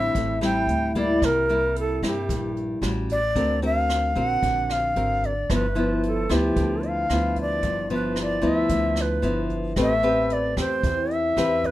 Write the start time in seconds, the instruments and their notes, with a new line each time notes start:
Already playing: upright bass A1, nylon-string guitar D3 G3 C4 E4, shakuhachi E5
0.15 upright bass A1, nylon-string guitar A2, kick, closed hi-hat
0.41 nylon-string guitar G3 C4 E4, shakuhachi G5, cross-stick, closed hi-hat
0.67 upright bass D2, closed hi-hat
0.95 nylon-string guitar G3 A#3 E4, shakuhachi D5, kick, closed hi-hat
1.22 upright bass C2, nylon-string guitar C3, shakuhachi A#4, kick, cross-stick, closed hi-hat
1.49 nylon-string guitar G3 A#3 E4, closed hi-hat
1.76 shakuhachi A4, closed hi-hat
2.02 upright bass G2, nylon-string guitar G3 A#3 E4, shakuhachi G4, kick, cross-stick, closed hi-hat
2.29 upright bass A#1, nylon-string guitar G2, kick, closed hi-hat
2.57 closed hi-hat
2.82 upright bass A1, nylon-string guitar G3 C#4 F#4, cross-stick, closed hi-hat
3.09 shakuhachi D5, kick, closed hi-hat
3.35 upright bass D2, nylon-string guitar D3 C4 F#4 A#4, kick, closed hi-hat
3.62 nylon-string guitar C4 F#4 A#4, shakuhachi F5, closed hi-hat
3.89 cross-stick, closed hi-hat
4.15 upright bass A#1, nylon-string guitar C4 F#4 A#4, shakuhachi F#5, kick, closed hi-hat
4.43 upright bass A#1, nylon-string guitar D3, kick, closed hi-hat
4.70 shakuhachi F5, cross-stick, closed hi-hat
4.96 upright bass G#1, nylon-string guitar C4 F#4 A#4, closed hi-hat
5.23 shakuhachi D5, kick, closed hi-hat
5.50 upright bass G1, nylon-string guitar G2 F3 B3 E4, shakuhachi B4, kick, cross-stick, closed hi-hat
5.75 nylon-string guitar F3 B3 E4, closed hi-hat
6.03 closed hi-hat
6.07 shakuhachi A4
6.29 upright bass D2, nylon-string guitar F3 B3 E4, shakuhachi G4, kick, cross-stick, closed hi-hat
6.56 upright bass D2, nylon-string guitar D3, kick, closed hi-hat
6.83 closed hi-hat
6.87 shakuhachi F5
7.10 upright bass D2, nylon-string guitar F3 B3 E4, cross-stick, closed hi-hat
7.36 kick, closed hi-hat
7.41 shakuhachi D5
7.63 upright bass G1, nylon-string guitar G2, kick, closed hi-hat
7.90 nylon-string guitar F3 B3 E4, closed hi-hat
7.94 shakuhachi B4
8.16 cross-stick, closed hi-hat
8.22 shakuhachi D5
8.42 upright bass D2, nylon-string guitar F3 B3 E4, kick, closed hi-hat
8.48 shakuhachi E5
8.69 upright bass D2, nylon-string guitar D3, kick, closed hi-hat
8.96 cross-stick, closed hi-hat
9.01 shakuhachi B4
9.22 upright bass G1, nylon-string guitar F3 B3 E4, closed hi-hat
9.50 kick, closed hi-hat
9.76 upright bass A1, nylon-string guitar A3 C4 G4 B4, kick, cross-stick, closed hi-hat
9.82 shakuhachi E5
10.03 nylon-string guitar C4 G4 B4, closed hi-hat
10.30 shakuhachi D5, closed hi-hat
10.57 upright bass E2, nylon-string guitar C4 G4, shakuhachi C5, kick, cross-stick, closed hi-hat
10.83 upright bass E2, nylon-string guitar E3, kick, closed hi-hat
11.11 shakuhachi E5, closed hi-hat
11.37 upright bass E2, nylon-string guitar C4 G4 B4, cross-stick, closed hi-hat
11.64 shakuhachi B4, kick, closed hi-hat